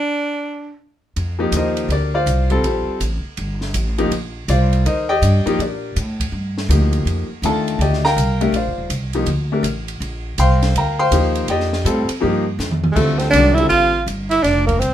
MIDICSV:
0, 0, Header, 1, 7, 480
1, 0, Start_track
1, 0, Tempo, 369004
1, 1515, Time_signature, 4, 2, 24, 8
1, 19431, End_track
2, 0, Start_track
2, 0, Title_t, "Alto saxophone"
2, 0, Program_c, 0, 65
2, 16817, Note_on_c, 0, 68, 57
2, 16876, Note_on_c, 0, 69, 69
2, 16896, Note_off_c, 0, 68, 0
2, 17175, Note_on_c, 0, 72, 67
2, 17195, Note_off_c, 0, 69, 0
2, 17345, Note_off_c, 0, 72, 0
2, 17356, Note_on_c, 0, 74, 77
2, 17660, Note_on_c, 0, 76, 72
2, 17680, Note_off_c, 0, 74, 0
2, 17815, Note_off_c, 0, 76, 0
2, 17823, Note_on_c, 0, 77, 84
2, 18270, Note_off_c, 0, 77, 0
2, 18608, Note_on_c, 0, 76, 80
2, 18783, Note_on_c, 0, 74, 78
2, 18803, Note_off_c, 0, 76, 0
2, 19080, Note_off_c, 0, 74, 0
2, 19088, Note_on_c, 0, 70, 67
2, 19254, Note_on_c, 0, 72, 77
2, 19274, Note_off_c, 0, 70, 0
2, 19431, Note_off_c, 0, 72, 0
2, 19431, End_track
3, 0, Start_track
3, 0, Title_t, "Grand piano"
3, 0, Program_c, 1, 0
3, 1803, Note_on_c, 1, 53, 79
3, 1811, Note_on_c, 1, 58, 67
3, 1819, Note_on_c, 1, 63, 70
3, 1822, Note_on_c, 1, 67, 82
3, 2023, Note_off_c, 1, 63, 0
3, 2034, Note_on_c, 1, 75, 71
3, 2036, Note_on_c, 1, 70, 60
3, 2038, Note_on_c, 1, 72, 57
3, 2043, Note_on_c, 1, 63, 61
3, 2432, Note_off_c, 1, 53, 0
3, 2435, Note_off_c, 1, 58, 0
3, 2441, Note_off_c, 1, 67, 0
3, 2463, Note_off_c, 1, 75, 0
3, 2464, Note_off_c, 1, 70, 0
3, 2465, Note_off_c, 1, 72, 0
3, 2467, Note_off_c, 1, 63, 0
3, 2496, Note_on_c, 1, 67, 49
3, 2498, Note_on_c, 1, 74, 64
3, 2503, Note_on_c, 1, 70, 53
3, 2506, Note_on_c, 1, 62, 49
3, 2776, Note_off_c, 1, 74, 0
3, 2783, Note_off_c, 1, 67, 0
3, 2787, Note_off_c, 1, 70, 0
3, 2789, Note_off_c, 1, 62, 0
3, 2789, Note_on_c, 1, 72, 76
3, 2792, Note_on_c, 1, 65, 73
3, 2794, Note_on_c, 1, 77, 90
3, 2796, Note_on_c, 1, 74, 84
3, 3255, Note_off_c, 1, 65, 0
3, 3259, Note_on_c, 1, 60, 73
3, 3262, Note_on_c, 1, 55, 77
3, 3274, Note_on_c, 1, 69, 87
3, 3275, Note_on_c, 1, 65, 68
3, 3393, Note_off_c, 1, 72, 0
3, 3396, Note_off_c, 1, 77, 0
3, 3397, Note_off_c, 1, 74, 0
3, 3447, Note_off_c, 1, 60, 0
3, 3447, Note_off_c, 1, 65, 0
3, 3457, Note_on_c, 1, 72, 58
3, 3466, Note_on_c, 1, 60, 46
3, 3466, Note_on_c, 1, 65, 42
3, 3469, Note_on_c, 1, 67, 44
3, 3880, Note_off_c, 1, 55, 0
3, 3886, Note_off_c, 1, 69, 0
3, 3893, Note_off_c, 1, 72, 0
3, 3898, Note_off_c, 1, 60, 0
3, 3898, Note_off_c, 1, 65, 0
3, 3900, Note_off_c, 1, 67, 0
3, 5181, Note_on_c, 1, 53, 86
3, 5186, Note_on_c, 1, 58, 78
3, 5187, Note_on_c, 1, 63, 77
3, 5195, Note_on_c, 1, 67, 84
3, 5336, Note_off_c, 1, 53, 0
3, 5339, Note_off_c, 1, 58, 0
3, 5339, Note_off_c, 1, 63, 0
3, 5344, Note_off_c, 1, 67, 0
3, 5849, Note_on_c, 1, 74, 75
3, 5853, Note_on_c, 1, 65, 74
3, 5853, Note_on_c, 1, 72, 66
3, 5857, Note_on_c, 1, 77, 90
3, 6287, Note_off_c, 1, 74, 0
3, 6289, Note_off_c, 1, 65, 0
3, 6289, Note_off_c, 1, 72, 0
3, 6291, Note_off_c, 1, 77, 0
3, 6321, Note_on_c, 1, 70, 56
3, 6323, Note_on_c, 1, 63, 53
3, 6323, Note_on_c, 1, 75, 71
3, 6327, Note_on_c, 1, 72, 61
3, 6607, Note_off_c, 1, 75, 0
3, 6614, Note_off_c, 1, 70, 0
3, 6615, Note_off_c, 1, 63, 0
3, 6617, Note_off_c, 1, 72, 0
3, 6623, Note_on_c, 1, 79, 100
3, 6626, Note_on_c, 1, 75, 86
3, 6633, Note_on_c, 1, 67, 78
3, 6633, Note_on_c, 1, 74, 77
3, 7096, Note_off_c, 1, 67, 0
3, 7100, Note_on_c, 1, 58, 76
3, 7101, Note_on_c, 1, 53, 76
3, 7111, Note_on_c, 1, 63, 78
3, 7116, Note_on_c, 1, 67, 90
3, 7227, Note_off_c, 1, 79, 0
3, 7229, Note_off_c, 1, 75, 0
3, 7232, Note_off_c, 1, 74, 0
3, 7255, Note_off_c, 1, 53, 0
3, 7255, Note_off_c, 1, 58, 0
3, 7260, Note_off_c, 1, 63, 0
3, 7262, Note_off_c, 1, 67, 0
3, 7304, Note_on_c, 1, 67, 44
3, 7308, Note_on_c, 1, 70, 41
3, 7308, Note_on_c, 1, 74, 54
3, 7309, Note_on_c, 1, 62, 47
3, 7734, Note_off_c, 1, 67, 0
3, 7736, Note_off_c, 1, 70, 0
3, 7736, Note_off_c, 1, 74, 0
3, 7737, Note_off_c, 1, 62, 0
3, 8710, Note_on_c, 1, 53, 52
3, 8715, Note_on_c, 1, 58, 50
3, 8723, Note_on_c, 1, 63, 47
3, 8726, Note_on_c, 1, 67, 58
3, 9433, Note_off_c, 1, 53, 0
3, 9435, Note_off_c, 1, 58, 0
3, 9439, Note_off_c, 1, 63, 0
3, 9440, Note_off_c, 1, 67, 0
3, 9676, Note_on_c, 1, 51, 58
3, 9680, Note_on_c, 1, 57, 56
3, 9693, Note_on_c, 1, 62, 56
3, 9697, Note_on_c, 1, 65, 64
3, 9699, Note_on_c, 1, 81, 93
3, 9701, Note_on_c, 1, 69, 77
3, 10129, Note_off_c, 1, 81, 0
3, 10130, Note_off_c, 1, 69, 0
3, 10168, Note_on_c, 1, 79, 60
3, 10170, Note_on_c, 1, 74, 56
3, 10172, Note_on_c, 1, 67, 53
3, 10176, Note_on_c, 1, 75, 52
3, 10394, Note_off_c, 1, 51, 0
3, 10396, Note_off_c, 1, 57, 0
3, 10403, Note_off_c, 1, 62, 0
3, 10405, Note_off_c, 1, 65, 0
3, 10453, Note_off_c, 1, 79, 0
3, 10454, Note_off_c, 1, 74, 0
3, 10455, Note_off_c, 1, 67, 0
3, 10457, Note_off_c, 1, 75, 0
3, 10467, Note_on_c, 1, 82, 104
3, 10473, Note_on_c, 1, 70, 89
3, 10475, Note_on_c, 1, 77, 82
3, 10479, Note_on_c, 1, 79, 86
3, 10935, Note_off_c, 1, 70, 0
3, 10939, Note_on_c, 1, 57, 74
3, 10942, Note_on_c, 1, 62, 66
3, 10948, Note_on_c, 1, 67, 78
3, 10955, Note_on_c, 1, 70, 86
3, 11066, Note_off_c, 1, 82, 0
3, 11070, Note_off_c, 1, 77, 0
3, 11072, Note_off_c, 1, 79, 0
3, 11090, Note_off_c, 1, 57, 0
3, 11092, Note_off_c, 1, 62, 0
3, 11094, Note_off_c, 1, 67, 0
3, 11098, Note_off_c, 1, 70, 0
3, 11130, Note_on_c, 1, 77, 56
3, 11133, Note_on_c, 1, 72, 47
3, 11135, Note_on_c, 1, 74, 49
3, 11136, Note_on_c, 1, 65, 51
3, 11563, Note_off_c, 1, 77, 0
3, 11564, Note_off_c, 1, 72, 0
3, 11565, Note_off_c, 1, 74, 0
3, 11566, Note_off_c, 1, 65, 0
3, 11898, Note_on_c, 1, 53, 75
3, 11903, Note_on_c, 1, 63, 66
3, 11905, Note_on_c, 1, 67, 76
3, 11908, Note_on_c, 1, 58, 63
3, 12048, Note_off_c, 1, 53, 0
3, 12051, Note_off_c, 1, 63, 0
3, 12052, Note_off_c, 1, 67, 0
3, 12053, Note_off_c, 1, 58, 0
3, 12383, Note_on_c, 1, 57, 61
3, 12390, Note_on_c, 1, 62, 59
3, 12396, Note_on_c, 1, 67, 62
3, 12401, Note_on_c, 1, 70, 69
3, 12531, Note_off_c, 1, 57, 0
3, 12534, Note_off_c, 1, 62, 0
3, 12537, Note_off_c, 1, 67, 0
3, 12539, Note_off_c, 1, 70, 0
3, 13518, Note_on_c, 1, 79, 86
3, 13523, Note_on_c, 1, 72, 76
3, 13526, Note_on_c, 1, 84, 99
3, 13527, Note_on_c, 1, 77, 88
3, 13955, Note_off_c, 1, 79, 0
3, 13957, Note_off_c, 1, 72, 0
3, 13958, Note_off_c, 1, 84, 0
3, 13959, Note_off_c, 1, 77, 0
3, 14016, Note_on_c, 1, 77, 61
3, 14017, Note_on_c, 1, 70, 60
3, 14019, Note_on_c, 1, 82, 72
3, 14024, Note_on_c, 1, 79, 63
3, 14285, Note_off_c, 1, 77, 0
3, 14286, Note_off_c, 1, 79, 0
3, 14294, Note_off_c, 1, 70, 0
3, 14296, Note_off_c, 1, 82, 0
3, 14302, Note_on_c, 1, 84, 111
3, 14304, Note_on_c, 1, 72, 92
3, 14304, Note_on_c, 1, 77, 92
3, 14306, Note_on_c, 1, 79, 90
3, 14452, Note_on_c, 1, 53, 65
3, 14461, Note_on_c, 1, 58, 60
3, 14471, Note_on_c, 1, 63, 58
3, 14479, Note_on_c, 1, 67, 65
3, 14901, Note_off_c, 1, 84, 0
3, 14902, Note_off_c, 1, 72, 0
3, 14902, Note_off_c, 1, 77, 0
3, 14903, Note_off_c, 1, 79, 0
3, 14951, Note_off_c, 1, 67, 0
3, 14956, Note_on_c, 1, 79, 82
3, 14969, Note_on_c, 1, 74, 66
3, 14970, Note_on_c, 1, 67, 70
3, 14974, Note_on_c, 1, 75, 72
3, 15180, Note_off_c, 1, 53, 0
3, 15184, Note_off_c, 1, 58, 0
3, 15189, Note_off_c, 1, 63, 0
3, 15394, Note_off_c, 1, 79, 0
3, 15400, Note_off_c, 1, 74, 0
3, 15401, Note_off_c, 1, 67, 0
3, 15403, Note_off_c, 1, 75, 0
3, 15415, Note_on_c, 1, 55, 71
3, 15426, Note_on_c, 1, 60, 68
3, 15428, Note_on_c, 1, 65, 63
3, 15433, Note_on_c, 1, 69, 72
3, 15692, Note_off_c, 1, 55, 0
3, 15697, Note_off_c, 1, 60, 0
3, 15698, Note_off_c, 1, 65, 0
3, 15701, Note_off_c, 1, 69, 0
3, 15877, Note_on_c, 1, 53, 84
3, 15885, Note_on_c, 1, 58, 79
3, 15888, Note_on_c, 1, 63, 72
3, 15894, Note_on_c, 1, 67, 91
3, 16163, Note_off_c, 1, 53, 0
3, 16167, Note_off_c, 1, 58, 0
3, 16169, Note_off_c, 1, 63, 0
3, 16171, Note_off_c, 1, 67, 0
3, 16851, Note_on_c, 1, 50, 60
3, 16857, Note_on_c, 1, 55, 56
3, 16864, Note_on_c, 1, 65, 54
3, 16865, Note_on_c, 1, 60, 54
3, 16874, Note_on_c, 1, 69, 67
3, 17319, Note_off_c, 1, 50, 0
3, 17322, Note_off_c, 1, 55, 0
3, 17325, Note_off_c, 1, 65, 0
3, 17326, Note_off_c, 1, 60, 0
3, 17330, Note_off_c, 1, 69, 0
3, 17355, Note_on_c, 1, 51, 56
3, 17366, Note_on_c, 1, 61, 52
3, 17368, Note_on_c, 1, 56, 54
3, 17370, Note_on_c, 1, 70, 61
3, 17374, Note_on_c, 1, 66, 53
3, 17625, Note_off_c, 1, 51, 0
3, 17630, Note_off_c, 1, 61, 0
3, 17631, Note_off_c, 1, 56, 0
3, 17632, Note_off_c, 1, 70, 0
3, 17634, Note_off_c, 1, 66, 0
3, 17661, Note_on_c, 1, 50, 55
3, 17669, Note_on_c, 1, 60, 53
3, 17674, Note_on_c, 1, 55, 52
3, 17677, Note_on_c, 1, 65, 52
3, 17683, Note_on_c, 1, 69, 62
3, 18075, Note_off_c, 1, 50, 0
3, 18079, Note_off_c, 1, 60, 0
3, 18081, Note_off_c, 1, 55, 0
3, 18082, Note_off_c, 1, 65, 0
3, 18086, Note_off_c, 1, 69, 0
3, 19431, End_track
4, 0, Start_track
4, 0, Title_t, "Tenor saxophone"
4, 0, Program_c, 2, 66
4, 0, Note_on_c, 2, 62, 85
4, 993, Note_off_c, 2, 62, 0
4, 16804, Note_on_c, 2, 56, 70
4, 16844, Note_on_c, 2, 57, 86
4, 16863, Note_off_c, 2, 56, 0
4, 17151, Note_on_c, 2, 60, 70
4, 17171, Note_off_c, 2, 57, 0
4, 17300, Note_off_c, 2, 60, 0
4, 17308, Note_on_c, 2, 62, 103
4, 17619, Note_on_c, 2, 64, 92
4, 17639, Note_off_c, 2, 62, 0
4, 17801, Note_off_c, 2, 64, 0
4, 17809, Note_on_c, 2, 65, 90
4, 18263, Note_off_c, 2, 65, 0
4, 18605, Note_on_c, 2, 64, 86
4, 18764, Note_on_c, 2, 62, 95
4, 18783, Note_off_c, 2, 64, 0
4, 19069, Note_off_c, 2, 62, 0
4, 19077, Note_on_c, 2, 58, 74
4, 19238, Note_on_c, 2, 60, 97
4, 19258, Note_off_c, 2, 58, 0
4, 19431, Note_off_c, 2, 60, 0
4, 19431, End_track
5, 0, Start_track
5, 0, Title_t, "Upright bass"
5, 0, Program_c, 3, 32
5, 1513, Note_on_c, 3, 41, 86
5, 1967, Note_off_c, 3, 41, 0
5, 1974, Note_on_c, 3, 39, 94
5, 2444, Note_off_c, 3, 39, 0
5, 2451, Note_on_c, 3, 38, 82
5, 2929, Note_off_c, 3, 38, 0
5, 2942, Note_on_c, 3, 36, 95
5, 3414, Note_off_c, 3, 36, 0
5, 3425, Note_on_c, 3, 34, 75
5, 3715, Note_off_c, 3, 34, 0
5, 3906, Note_on_c, 3, 33, 96
5, 4195, Note_off_c, 3, 33, 0
5, 4390, Note_on_c, 3, 31, 89
5, 4857, Note_off_c, 3, 31, 0
5, 4866, Note_on_c, 3, 33, 100
5, 5332, Note_off_c, 3, 33, 0
5, 5339, Note_on_c, 3, 34, 78
5, 5811, Note_off_c, 3, 34, 0
5, 5830, Note_on_c, 3, 36, 100
5, 6296, Note_off_c, 3, 36, 0
5, 6313, Note_on_c, 3, 39, 82
5, 6777, Note_off_c, 3, 39, 0
5, 6785, Note_on_c, 3, 43, 97
5, 7073, Note_off_c, 3, 43, 0
5, 7269, Note_on_c, 3, 46, 83
5, 7734, Note_off_c, 3, 46, 0
5, 7756, Note_on_c, 3, 45, 91
5, 8215, Note_off_c, 3, 45, 0
5, 8222, Note_on_c, 3, 43, 86
5, 8690, Note_off_c, 3, 43, 0
5, 8698, Note_on_c, 3, 38, 100
5, 9168, Note_off_c, 3, 38, 0
5, 9174, Note_on_c, 3, 41, 81
5, 9464, Note_off_c, 3, 41, 0
5, 9654, Note_on_c, 3, 39, 87
5, 10124, Note_off_c, 3, 39, 0
5, 10130, Note_on_c, 3, 38, 90
5, 10602, Note_off_c, 3, 38, 0
5, 10620, Note_on_c, 3, 36, 100
5, 11079, Note_off_c, 3, 36, 0
5, 11087, Note_on_c, 3, 34, 91
5, 11256, Note_on_c, 3, 29, 56
5, 11276, Note_off_c, 3, 34, 0
5, 11410, Note_off_c, 3, 29, 0
5, 11418, Note_on_c, 3, 27, 62
5, 11568, Note_off_c, 3, 27, 0
5, 11574, Note_on_c, 3, 36, 86
5, 12036, Note_off_c, 3, 36, 0
5, 12043, Note_on_c, 3, 38, 97
5, 12516, Note_off_c, 3, 38, 0
5, 12524, Note_on_c, 3, 33, 97
5, 12996, Note_off_c, 3, 33, 0
5, 13013, Note_on_c, 3, 34, 86
5, 13481, Note_off_c, 3, 34, 0
5, 13503, Note_on_c, 3, 36, 93
5, 13965, Note_off_c, 3, 36, 0
5, 13977, Note_on_c, 3, 38, 83
5, 14442, Note_off_c, 3, 38, 0
5, 14457, Note_on_c, 3, 39, 93
5, 14923, Note_off_c, 3, 39, 0
5, 14936, Note_on_c, 3, 41, 84
5, 15402, Note_off_c, 3, 41, 0
5, 15411, Note_on_c, 3, 45, 93
5, 15699, Note_off_c, 3, 45, 0
5, 15911, Note_on_c, 3, 43, 85
5, 16366, Note_off_c, 3, 43, 0
5, 16373, Note_on_c, 3, 41, 99
5, 16842, Note_off_c, 3, 41, 0
5, 16857, Note_on_c, 3, 38, 80
5, 17325, Note_off_c, 3, 38, 0
5, 17339, Note_on_c, 3, 36, 90
5, 17807, Note_off_c, 3, 36, 0
5, 17815, Note_on_c, 3, 33, 77
5, 18286, Note_off_c, 3, 33, 0
5, 18295, Note_on_c, 3, 31, 85
5, 18767, Note_off_c, 3, 31, 0
5, 18774, Note_on_c, 3, 29, 82
5, 19247, Note_off_c, 3, 29, 0
5, 19256, Note_on_c, 3, 36, 87
5, 19431, Note_off_c, 3, 36, 0
5, 19431, End_track
6, 0, Start_track
6, 0, Title_t, "Muted upright bass strokes"
6, 3750, Note_on_c, 9, 29, 35
6, 3880, Note_off_c, 9, 29, 0
6, 4222, Note_on_c, 9, 29, 35
6, 4352, Note_off_c, 9, 29, 0
6, 7102, Note_on_c, 9, 29, 45
6, 7232, Note_off_c, 9, 29, 0
6, 9475, Note_on_c, 9, 29, 35
6, 9605, Note_off_c, 9, 29, 0
6, 15731, Note_on_c, 9, 29, 38
6, 15861, Note_off_c, 9, 29, 0
6, 19431, End_track
7, 0, Start_track
7, 0, Title_t, "Drums"
7, 1514, Note_on_c, 9, 51, 54
7, 1644, Note_off_c, 9, 51, 0
7, 1981, Note_on_c, 9, 44, 66
7, 1981, Note_on_c, 9, 51, 73
7, 2111, Note_off_c, 9, 44, 0
7, 2111, Note_off_c, 9, 51, 0
7, 2299, Note_on_c, 9, 51, 46
7, 2430, Note_off_c, 9, 51, 0
7, 2475, Note_on_c, 9, 51, 57
7, 2605, Note_off_c, 9, 51, 0
7, 2951, Note_on_c, 9, 44, 58
7, 2951, Note_on_c, 9, 51, 64
7, 3081, Note_off_c, 9, 44, 0
7, 3081, Note_off_c, 9, 51, 0
7, 3251, Note_on_c, 9, 51, 43
7, 3382, Note_off_c, 9, 51, 0
7, 3434, Note_on_c, 9, 51, 55
7, 3564, Note_off_c, 9, 51, 0
7, 3911, Note_on_c, 9, 44, 61
7, 3911, Note_on_c, 9, 51, 64
7, 4041, Note_off_c, 9, 44, 0
7, 4041, Note_off_c, 9, 51, 0
7, 4387, Note_on_c, 9, 51, 57
7, 4517, Note_off_c, 9, 51, 0
7, 4698, Note_on_c, 9, 38, 37
7, 4828, Note_off_c, 9, 38, 0
7, 4866, Note_on_c, 9, 44, 58
7, 4866, Note_on_c, 9, 51, 71
7, 4996, Note_off_c, 9, 44, 0
7, 4996, Note_off_c, 9, 51, 0
7, 5181, Note_on_c, 9, 51, 43
7, 5311, Note_off_c, 9, 51, 0
7, 5354, Note_on_c, 9, 51, 62
7, 5484, Note_off_c, 9, 51, 0
7, 5833, Note_on_c, 9, 44, 61
7, 5833, Note_on_c, 9, 51, 72
7, 5963, Note_off_c, 9, 44, 0
7, 5963, Note_off_c, 9, 51, 0
7, 6148, Note_on_c, 9, 51, 45
7, 6278, Note_off_c, 9, 51, 0
7, 6321, Note_on_c, 9, 51, 59
7, 6452, Note_off_c, 9, 51, 0
7, 6797, Note_on_c, 9, 44, 60
7, 6797, Note_on_c, 9, 51, 69
7, 6927, Note_off_c, 9, 44, 0
7, 6927, Note_off_c, 9, 51, 0
7, 7112, Note_on_c, 9, 51, 48
7, 7242, Note_off_c, 9, 51, 0
7, 7286, Note_on_c, 9, 51, 52
7, 7416, Note_off_c, 9, 51, 0
7, 7757, Note_on_c, 9, 44, 54
7, 7757, Note_on_c, 9, 51, 67
7, 7887, Note_off_c, 9, 44, 0
7, 7887, Note_off_c, 9, 51, 0
7, 8065, Note_on_c, 9, 36, 50
7, 8072, Note_on_c, 9, 51, 68
7, 8195, Note_off_c, 9, 36, 0
7, 8202, Note_off_c, 9, 51, 0
7, 8554, Note_on_c, 9, 38, 49
7, 8684, Note_off_c, 9, 38, 0
7, 8722, Note_on_c, 9, 44, 54
7, 8722, Note_on_c, 9, 51, 70
7, 8852, Note_off_c, 9, 44, 0
7, 8852, Note_off_c, 9, 51, 0
7, 9011, Note_on_c, 9, 51, 45
7, 9141, Note_off_c, 9, 51, 0
7, 9196, Note_on_c, 9, 51, 56
7, 9326, Note_off_c, 9, 51, 0
7, 9670, Note_on_c, 9, 44, 62
7, 9670, Note_on_c, 9, 51, 67
7, 9800, Note_off_c, 9, 44, 0
7, 9800, Note_off_c, 9, 51, 0
7, 9986, Note_on_c, 9, 51, 45
7, 10116, Note_off_c, 9, 51, 0
7, 10159, Note_on_c, 9, 51, 58
7, 10290, Note_off_c, 9, 51, 0
7, 10319, Note_on_c, 9, 38, 30
7, 10450, Note_off_c, 9, 38, 0
7, 10473, Note_on_c, 9, 38, 46
7, 10603, Note_off_c, 9, 38, 0
7, 10638, Note_on_c, 9, 44, 64
7, 10638, Note_on_c, 9, 51, 69
7, 10768, Note_off_c, 9, 44, 0
7, 10768, Note_off_c, 9, 51, 0
7, 10940, Note_on_c, 9, 51, 47
7, 11070, Note_off_c, 9, 51, 0
7, 11106, Note_on_c, 9, 51, 58
7, 11236, Note_off_c, 9, 51, 0
7, 11577, Note_on_c, 9, 44, 58
7, 11577, Note_on_c, 9, 51, 72
7, 11707, Note_off_c, 9, 44, 0
7, 11707, Note_off_c, 9, 51, 0
7, 11879, Note_on_c, 9, 51, 47
7, 12009, Note_off_c, 9, 51, 0
7, 12051, Note_on_c, 9, 51, 64
7, 12181, Note_off_c, 9, 51, 0
7, 12541, Note_on_c, 9, 44, 54
7, 12541, Note_on_c, 9, 51, 73
7, 12671, Note_off_c, 9, 44, 0
7, 12671, Note_off_c, 9, 51, 0
7, 12854, Note_on_c, 9, 51, 51
7, 12984, Note_off_c, 9, 51, 0
7, 13029, Note_on_c, 9, 51, 60
7, 13159, Note_off_c, 9, 51, 0
7, 13501, Note_on_c, 9, 44, 70
7, 13501, Note_on_c, 9, 51, 74
7, 13631, Note_off_c, 9, 44, 0
7, 13631, Note_off_c, 9, 51, 0
7, 13821, Note_on_c, 9, 51, 47
7, 13822, Note_on_c, 9, 38, 52
7, 13951, Note_off_c, 9, 51, 0
7, 13952, Note_off_c, 9, 38, 0
7, 13992, Note_on_c, 9, 51, 68
7, 14122, Note_off_c, 9, 51, 0
7, 14462, Note_on_c, 9, 44, 67
7, 14462, Note_on_c, 9, 51, 72
7, 14592, Note_off_c, 9, 44, 0
7, 14592, Note_off_c, 9, 51, 0
7, 14769, Note_on_c, 9, 51, 49
7, 14899, Note_off_c, 9, 51, 0
7, 14934, Note_on_c, 9, 51, 61
7, 15064, Note_off_c, 9, 51, 0
7, 15093, Note_on_c, 9, 38, 31
7, 15223, Note_off_c, 9, 38, 0
7, 15257, Note_on_c, 9, 38, 45
7, 15388, Note_off_c, 9, 38, 0
7, 15427, Note_on_c, 9, 44, 62
7, 15427, Note_on_c, 9, 51, 65
7, 15557, Note_off_c, 9, 44, 0
7, 15557, Note_off_c, 9, 51, 0
7, 15724, Note_on_c, 9, 51, 72
7, 15854, Note_off_c, 9, 51, 0
7, 16387, Note_on_c, 9, 44, 58
7, 16388, Note_on_c, 9, 38, 55
7, 16517, Note_off_c, 9, 44, 0
7, 16518, Note_off_c, 9, 38, 0
7, 16538, Note_on_c, 9, 47, 67
7, 16669, Note_off_c, 9, 47, 0
7, 16697, Note_on_c, 9, 47, 83
7, 16827, Note_off_c, 9, 47, 0
7, 16859, Note_on_c, 9, 36, 68
7, 16862, Note_on_c, 9, 49, 69
7, 16989, Note_off_c, 9, 36, 0
7, 16992, Note_off_c, 9, 49, 0
7, 17164, Note_on_c, 9, 51, 44
7, 17165, Note_on_c, 9, 38, 33
7, 17294, Note_off_c, 9, 51, 0
7, 17295, Note_off_c, 9, 38, 0
7, 17345, Note_on_c, 9, 44, 59
7, 17345, Note_on_c, 9, 51, 67
7, 17475, Note_off_c, 9, 44, 0
7, 17475, Note_off_c, 9, 51, 0
7, 17661, Note_on_c, 9, 51, 44
7, 17791, Note_off_c, 9, 51, 0
7, 17821, Note_on_c, 9, 51, 45
7, 17951, Note_off_c, 9, 51, 0
7, 18309, Note_on_c, 9, 44, 59
7, 18309, Note_on_c, 9, 51, 65
7, 18439, Note_off_c, 9, 44, 0
7, 18439, Note_off_c, 9, 51, 0
7, 18616, Note_on_c, 9, 51, 48
7, 18746, Note_off_c, 9, 51, 0
7, 18788, Note_on_c, 9, 51, 55
7, 18789, Note_on_c, 9, 38, 35
7, 18918, Note_off_c, 9, 51, 0
7, 18919, Note_off_c, 9, 38, 0
7, 19100, Note_on_c, 9, 36, 53
7, 19104, Note_on_c, 9, 51, 48
7, 19230, Note_off_c, 9, 36, 0
7, 19234, Note_off_c, 9, 51, 0
7, 19273, Note_on_c, 9, 44, 54
7, 19273, Note_on_c, 9, 51, 63
7, 19403, Note_off_c, 9, 44, 0
7, 19403, Note_off_c, 9, 51, 0
7, 19431, End_track
0, 0, End_of_file